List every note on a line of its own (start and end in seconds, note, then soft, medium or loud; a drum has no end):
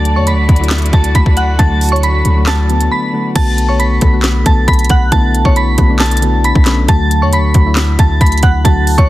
0.00 0.17 D2 loud
0.00 0.28 D3 loud
0.00 0.29 F#3 medium
0.00 0.29 A3 loud
0.00 3.32 A3 medium
0.00 0.29 F#4 loud
0.00 3.32 F#4 medium
0.00 3.32 D5 medium
0.00 0.14 A5 loud
0.00 0.14 A6 medium
0.05 closed hi-hat medium
0.16 0.34 E2 loud
0.16 0.27 C#5 medium
0.16 0.26 C#6 medium
0.27 0.89 B5 medium
0.27 0.90 B6 medium
0.27 closed hi-hat medium
0.32 0.48 D2 loud
0.48 0.91 D2 loud
0.48 0.56 D3 medium
0.48 0.56 F#3 medium
0.48 0.57 A3 medium
0.48 0.57 F#4 medium
0.48 kick medium
0.48 closed hi-hat soft
0.56 0.82 D3 medium
0.56 0.83 F#3 medium
0.56 0.83 A3 medium
0.56 closed hi-hat soft
0.61 0.83 E4 medium
0.61 closed hi-hat medium
0.70 snare loud
0.70 clap medium
0.70 closed hi-hat medium
0.78 closed hi-hat medium
0.82 closed hi-hat soft
0.86 closed hi-hat medium
0.92 1.14 D2 loud
0.92 1.39 D3 medium
0.92 1.39 F#3 medium
0.92 1.39 A3 medium
0.92 1.40 F#4 medium
0.92 1.14 A5 medium
0.92 1.14 A6 medium
0.92 kick loud
0.92 closed hi-hat soft
1.04 closed hi-hat medium
1.15 1.26 D2 loud
1.15 1.36 B5 medium
1.15 1.36 B6 medium
1.15 kick medium
1.15 closed hi-hat medium
1.26 1.58 D2 loud
1.26 kick loud
1.37 1.58 F#5 medium
1.37 1.58 F#6 medium
1.37 closed hi-hat medium
1.58 2.23 D2 loud
1.58 2.05 D3 loud
1.58 2.05 F#3 medium
1.58 2.06 A3 medium
1.58 2.06 F#4 loud
1.58 1.90 A5 medium
1.58 1.91 A6 medium
1.58 kick loud
1.58 closed hi-hat medium
1.81 closed hi-hat medium
1.81 open hi-hat medium
1.89 2.02 C#6 medium
1.89 closed hi-hat medium
1.93 2.03 C#5 medium
1.93 closed hi-hat soft
2.03 2.45 B5 medium
2.03 2.45 B6 medium
2.03 closed hi-hat medium
2.24 2.89 D2 loud
2.24 2.32 D3 medium
2.24 2.33 F#3 medium
2.24 2.33 A3 medium
2.24 2.33 F#4 medium
2.24 closed hi-hat medium
2.35 2.59 D3 medium
2.35 2.59 F#3 medium
2.35 2.60 A3 medium
2.35 2.60 F#4 medium
2.47 2.89 A5 medium
2.47 2.89 A6 medium
2.47 snare loud
2.47 clap medium
2.47 closed hi-hat medium
2.68 3.00 D3 medium
2.68 3.00 F#3 medium
2.68 3.00 A3 medium
2.68 3.01 B3 medium
2.68 closed hi-hat soft
2.81 closed hi-hat medium
2.91 3.12 B5 medium
2.91 3.13 B6 medium
3.13 3.28 D3 medium
3.13 3.29 F#3 medium
3.13 3.29 A3 medium
3.13 3.29 F#4 medium
3.35 3.99 B1 loud
3.35 3.81 D3 loud
3.35 3.82 A3 loud
3.35 3.82 B3 medium
3.35 3.82 F#4 loud
3.35 3.67 A5 loud
3.35 3.67 A6 medium
3.35 kick loud
3.35 closed hi-hat medium
3.35 crash loud
3.58 closed hi-hat medium
3.69 3.79 C#5 medium
3.69 3.79 C#6 medium
3.79 4.42 B5 medium
3.79 4.42 B6 medium
3.79 closed hi-hat medium
4.01 4.44 B1 loud
4.01 4.09 D3 medium
4.01 4.09 A3 medium
4.01 4.10 B3 medium
4.01 4.10 A4 medium
4.01 kick medium
4.01 closed hi-hat medium
4.12 4.36 D3 medium
4.12 4.36 A3 medium
4.12 4.36 B3 medium
4.12 4.36 F#4 medium
4.23 snare loud
4.23 clap medium
4.23 closed hi-hat medium
4.45 4.67 B1 loud
4.45 4.92 D3 medium
4.45 4.92 A3 medium
4.45 4.92 B3 medium
4.45 4.93 F#4 medium
4.45 4.67 A5 medium
4.45 4.67 A6 medium
4.45 kick loud
4.45 closed hi-hat medium
4.68 4.89 B1 loud
4.68 4.89 B5 medium
4.68 4.89 B6 medium
4.68 kick medium
4.68 closed hi-hat medium
4.73 closed hi-hat medium
4.79 closed hi-hat medium
4.84 closed hi-hat medium
4.89 5.11 B1 loud
4.89 5.11 F#5 medium
4.89 5.11 F#6 medium
4.89 kick loud
4.89 closed hi-hat medium
5.11 5.44 B1 loud
5.11 5.58 D3 loud
5.11 5.58 A3 medium
5.11 5.58 B3 loud
5.11 5.59 E4 loud
5.11 5.43 A5 loud
5.11 5.44 A6 medium
5.11 kick loud
5.11 closed hi-hat medium
5.34 closed hi-hat medium
5.45 5.77 B1 loud
5.45 5.56 C#5 medium
5.45 5.56 C#6 medium
5.45 kick loud
5.56 5.98 B5 medium
5.56 5.98 B6 medium
5.56 closed hi-hat medium
5.77 6.52 B1 loud
5.77 5.86 D3 medium
5.77 5.86 A3 medium
5.77 5.86 B3 medium
5.77 5.86 F#4 medium
5.77 kick medium
5.77 closed hi-hat medium
5.88 6.12 D3 medium
5.88 6.12 A3 medium
5.88 6.13 B3 medium
5.88 6.13 D4 medium
5.99 6.42 A5 medium
5.99 6.42 A6 medium
5.99 snare loud
5.99 clap medium
5.99 closed hi-hat soft
6.06 closed hi-hat medium
6.11 closed hi-hat medium
6.17 closed hi-hat medium
6.21 6.53 D3 medium
6.21 6.53 A3 medium
6.21 6.53 B3 medium
6.21 6.54 F#4 medium
6.21 closed hi-hat medium
6.44 6.65 B5 medium
6.44 6.66 B6 medium
6.44 closed hi-hat medium
6.55 6.87 B1 loud
6.55 kick loud
6.65 6.81 D3 medium
6.65 6.82 A3 medium
6.65 6.82 B3 medium
6.65 6.82 C#4 medium
6.65 snare medium
6.65 clap medium
6.65 closed hi-hat medium
6.87 7.23 D2 loud
6.87 7.34 D3 loud
6.87 7.35 F#3 loud
6.87 7.35 A3 loud
6.87 7.35 F#4 loud
6.87 7.20 A5 loud
6.87 7.20 A6 medium
6.87 kick loud
6.87 closed hi-hat medium
7.11 closed hi-hat medium
7.22 7.40 E2 loud
7.22 7.33 C#5 medium
7.22 7.32 C#6 medium
7.33 7.95 B5 medium
7.33 7.96 B6 medium
7.33 closed hi-hat medium
7.38 7.54 D2 loud
7.54 7.97 D2 loud
7.54 7.62 D3 medium
7.54 7.62 F#3 medium
7.54 7.63 A3 medium
7.54 7.63 F#4 medium
7.54 kick medium
7.54 closed hi-hat medium
7.65 7.88 D3 medium
7.65 7.89 F#3 medium
7.65 7.89 A3 medium
7.65 7.89 E4 medium
7.76 snare loud
7.76 clap medium
7.76 closed hi-hat medium
7.98 8.20 D2 loud
7.98 8.45 D3 medium
7.98 8.45 F#3 medium
7.98 8.45 A3 medium
7.98 8.46 F#4 medium
7.98 8.20 A5 medium
7.98 8.20 A6 medium
7.98 kick loud
7.98 closed hi-hat medium
8.21 8.42 D2 loud
8.21 8.42 B5 medium
8.21 8.42 B6 medium
8.21 kick medium
8.21 closed hi-hat medium
8.26 closed hi-hat medium
8.32 closed hi-hat medium
8.37 closed hi-hat medium
8.43 8.64 D2 loud
8.43 8.64 F#5 medium
8.43 8.64 F#6 medium
8.43 kick loud
8.43 closed hi-hat medium
8.64 8.97 D2 loud
8.64 9.09 D3 loud
8.64 9.09 F#3 loud
8.64 9.09 A3 medium
8.64 9.09 F#4 loud
8.64 8.96 A5 medium
8.64 8.96 A6 medium
8.64 kick loud
8.64 closed hi-hat medium
8.87 closed hi-hat medium
8.87 open hi-hat medium
8.98 9.09 D2 loud
8.98 9.09 C#5 medium
8.98 9.08 C#6 medium
8.98 kick loud
8.98 closed hi-hat soft